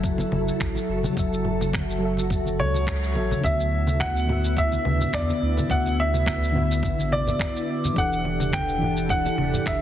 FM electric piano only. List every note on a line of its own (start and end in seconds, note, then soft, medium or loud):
0.00 1.13 F#3 medium
0.00 1.15 F#4 medium
0.00 1.17 A4 medium
0.00 1.19 E5 loud
1.13 1.97 F#3 medium
1.13 1.98 F#4 medium
1.17 1.99 A4 medium
1.17 2.00 E5 loud
1.99 3.11 F#3 medium
1.99 3.12 F#4 medium
2.03 3.13 A4 medium
2.03 3.14 E5 medium
3.14 3.30 F#3 medium
3.14 3.30 F#4 medium
3.14 3.30 A4 medium
3.14 3.31 E5 medium
3.41 4.24 D3 medium
3.41 4.25 B3 medium
3.45 4.26 F#4 medium
3.45 4.27 E5 medium
4.26 5.65 D3 medium
4.26 5.66 B3 medium
4.30 5.68 F#4 medium
4.30 5.69 E5 medium
5.67 6.50 D3 medium
5.67 6.51 B3 medium
5.71 6.52 F#4 medium
5.71 6.53 E5 medium
6.52 7.92 D3 medium
6.52 7.93 B3 medium
6.56 7.94 F#4 medium
6.56 7.95 E5 medium
7.93 8.76 E3 medium
7.93 8.77 D4 medium
7.93 8.78 G4 medium
7.98 8.79 A4 medium
7.98 8.80 F#5 loud
8.78 9.82 E3 medium
8.78 9.82 D4 medium
8.78 9.82 G4 medium
8.83 9.82 A4 medium
8.83 9.82 F#5 medium